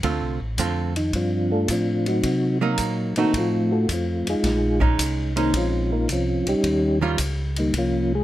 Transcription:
0.03 D2 D3 A3 C4 F4, kick, ride
0.21 C2
0.40 A1
0.58 F2 D3 A3 C4 F4, kick, hi-hat pedal, ride
0.96 D#3 D#4, ride
1.13 G2 F3 C4 D4 F4, kick, ride
1.52 A3 D4 F4 A4
1.68 A2 F3 C4 F4, kick, hi-hat pedal, ride
1.72 D4
2.06 F#3 C4 D#4 F#4, ride
2.23 C3, kick, ride
2.61 F#3 A#3 D#4
2.78 A#2, kick, hi-hat pedal, ride
3.16 A#2 D#3 A3 A#3 C4 D#4 F#4, ride
3.33 A2 A3, kick, ride
3.37 F3 C4 F4
3.72 A3 F4 F#4 A4
3.88 F2, kick, hi-hat pedal, ride
3.93 F3 A3 C4 F4
4.27 F2 G#3 D#4 F4 G#4, ride
4.43 A#1, kick, snare, ride
4.80 G#3 C#4 D#4, kick
4.99 C2, kick, hi-hat pedal, ride
5.36 D#3 G#3 A#3 C4 C#4 D#4, ride
5.53 A#1 F3 C4 C#4, kick, ride
5.57 F4
5.92 A#3 D#4 F4 A#4
6.08 C2 C4, kick, hi-hat pedal, ride
6.12 F3 C#4 F4
6.46 C2 G3 C#4 D#4 G4, ride
6.63 D#2, kick, ride
7.01 D#3 G3 C#4 F4
7.18 C#2, kick, hi-hat pedal, ride
7.56 D#3 G3 A#3 D#4, ride
7.73 C2, kick, ride
7.78 F3 A#3 C#4 F4
8.15 G#3 G#4

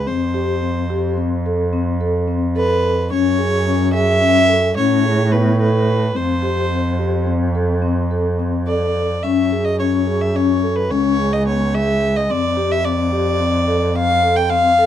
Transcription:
0.07 F2 C4 C5
0.34 G4
0.62 C4
0.90 G4
1.18 C4
1.46 A4
1.73 C4
2.01 A4
2.28 C4
2.56 A4 B4
3.11 F#2 C#4 C#5
3.39 G#4
3.66 C#4
3.93 G#4 E5
4.21 C#4
4.49 A4
4.77 A2 C#4 C#5
5.05 G#4
5.32 B3 B4
5.59 A4 B4
6.15 F2 C4 C5
6.42 G4
6.71 C4
6.99 G4
7.27 C4
7.55 A4
7.82 C4
8.11 A4
8.39 C4
8.67 A4 D5
9.23 F#2 C#4 E5
9.52 G#4
9.65 D#5
9.79 C#4 C#5
10.07 G#4
10.21 E5
10.35 C#4 C#5
10.63 A4
10.76 B4
10.90 C#2 C#4 C#5
11.19 G#4
11.33 D#5
11.47 B3 C#5
11.74 G#4 E5
12.17 D#5
12.30 F2 C4 D5
12.57 G4
12.72 E5
12.85 C4 D5
13.12 G4
13.40 C4
13.68 A4
13.94 C4 F5
14.23 A4
14.36 G5
14.50 C4 F5
14.79 A4

